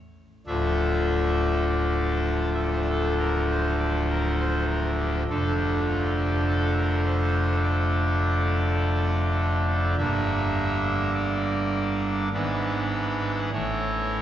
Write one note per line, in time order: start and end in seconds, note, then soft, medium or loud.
0.47 5.23 D1 medium
0.47 5.23 D2 medium
0.47 5.23 F3 medium
0.47 5.23 A3 medium
0.47 5.23 D4 medium
0.47 1.65 E5 loud
1.69 2.50 D5 loud
2.54 2.61 E5 medium
2.63 2.70 D5 medium
2.72 2.79 C5 medium
2.82 2.88 D5 medium
2.89 3.14 A4 loud
3.19 3.44 A#4 loud
3.50 3.75 C5 loud
3.79 4.04 D5 loud
4.09 4.34 A#4 loud
4.40 4.64 C5 loud
4.69 4.93 A#4 medium
4.99 5.23 G4 medium
5.29 9.95 F1 medium
5.29 9.95 F2 medium
5.29 9.95 D3 medium
5.29 9.95 A3 medium
5.29 9.95 D4 medium
5.29 5.54 A4 loud
5.58 5.82 G4 loud
5.88 6.12 F4 medium
6.17 6.42 G4 loud
6.47 6.71 A4 loud
6.76 7.01 A#4 loud
7.05 7.55 C5 loud
7.64 9.94 D5 loud
9.98 12.28 G1 medium
9.98 12.28 G2 medium
9.98 12.28 D3 medium
9.98 12.28 A#3 medium
9.98 12.28 D4 medium
9.98 11.11 E5 loud
11.15 12.29 D5 loud
12.33 13.50 G#1 medium
12.33 13.50 G#2 medium
12.33 13.50 E3 medium
12.33 13.50 B3 medium
12.33 13.50 D4 medium
12.33 13.50 B4 loud
13.52 14.22 A1 medium
13.52 14.22 A2 medium
13.52 14.22 E3 medium
13.52 14.22 A3 medium
13.52 14.22 E4 medium
13.52 14.22 C#5 loud